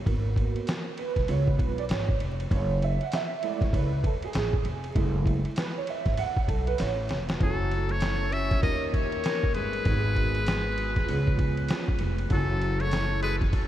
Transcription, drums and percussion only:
0.06 kick loud
0.06 ride medium
0.36 kick medium
0.36 ride medium
0.56 ride soft
0.67 snare loud
0.67 hi-hat pedal soft
0.67 ride medium
0.98 ride medium
1.16 kick medium
1.16 snare soft
1.16 ride soft
1.28 ride medium
1.47 kick medium
1.59 kick medium
1.59 ride medium
1.78 ride soft
1.89 snare loud
1.89 hi-hat pedal medium
1.89 ride medium
2.09 kick medium
2.20 ride medium
2.40 ride soft
2.51 kick loud
2.51 ride medium
2.82 ride medium
3.01 ride soft
3.12 snare loud
3.12 hi-hat pedal medium
3.12 ride medium
3.43 ride medium
3.61 kick medium
3.61 snare soft
3.61 ride soft
3.73 kick medium
3.73 ride medium
4.04 kick loud
4.04 ride medium
4.22 ride soft
4.33 snare loud
4.33 hi-hat pedal medium
4.33 ride medium
4.53 kick medium
4.65 ride medium
4.84 ride soft
4.95 kick loud
4.95 ride medium
5.26 kick medium
5.26 ride soft
5.45 ride soft
5.56 snare loud
5.56 hi-hat pedal soft
5.56 ride medium
5.87 ride medium
6.06 kick medium
6.06 snare soft
6.06 ride soft
6.17 ride medium
6.37 kick medium
6.48 kick medium
6.48 ride medium
6.67 ride soft
6.78 snare medium
6.78 hi-hat pedal medium
6.78 ride medium
7.09 snare medium
7.09 ride medium
7.29 snare loud
7.29 ride soft
7.40 kick loud
7.40 ride medium
7.71 ride medium
7.89 ride soft
8.00 snare loud
8.00 hi-hat pedal soft
8.00 ride medium
8.32 ride medium
8.51 kick medium
8.51 snare soft
8.51 ride soft
8.63 kick medium
8.63 ride medium
8.94 kick medium
8.94 ride medium
9.12 ride soft
9.24 snare loud
9.24 hi-hat pedal medium
9.24 ride medium
9.43 kick medium
9.54 ride medium
9.73 ride soft
9.85 kick loud
9.85 ride medium
10.16 kick medium
10.16 ride soft
10.35 ride soft
10.46 snare loud
10.46 hi-hat pedal medium
10.46 ride medium
10.78 ride medium
10.96 kick medium
10.96 snare soft
10.96 ride soft
11.08 ride medium
11.27 kick medium
11.39 kick medium
11.39 ride medium
11.57 ride soft
11.68 snare loud
11.68 hi-hat pedal medium
11.68 ride medium
11.88 kick medium
11.99 ride medium
12.18 ride soft
12.30 kick loud
12.30 ride medium
12.62 ride medium
12.80 ride soft
12.91 snare medium
12.91 hi-hat pedal soft
12.91 ride medium
13.23 ride medium
13.41 kick medium
13.41 snare soft
13.41 ride soft
13.53 kick medium
13.53 ride medium

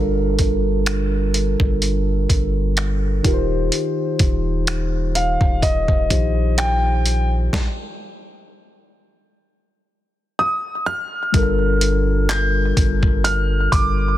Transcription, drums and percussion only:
0.39 kick medium
0.39 closed hi-hat medium
0.86 finger snap loud
0.86 closed hi-hat medium
1.34 closed hi-hat medium
1.60 kick medium
1.82 closed hi-hat medium
2.30 kick medium
2.30 closed hi-hat medium
2.77 finger snap loud
2.77 closed hi-hat medium
3.24 kick loud
3.24 closed hi-hat medium
3.72 closed hi-hat medium
4.19 kick medium
4.19 closed hi-hat medium
4.67 finger snap loud
4.67 closed hi-hat medium
5.15 closed hi-hat medium
5.41 kick medium
5.62 kick medium
5.62 closed hi-hat medium
5.88 kick medium
6.10 kick medium
6.10 closed hi-hat medium
6.58 finger snap loud
6.58 closed hi-hat medium
7.06 closed hi-hat medium
7.53 kick loud
7.53 snare medium
11.34 kick loud
11.34 closed hi-hat medium
11.81 closed hi-hat medium
12.29 clap loud
12.29 closed hi-hat medium
12.77 kick loud
12.77 closed hi-hat medium
13.03 kick loud
13.25 closed hi-hat medium
13.72 kick medium
13.72 closed hi-hat medium

